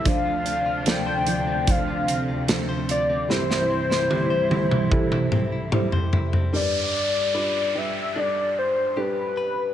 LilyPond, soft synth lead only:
\new Staff \with { instrumentName = "Soft synth lead" } { \time 4/4 \key g \mixolydian \tempo 4 = 74 f''4 g''4 f''4 r8 d''8 | c''2. r4 | d''4. e''8 d''8 c''8 b'4 | }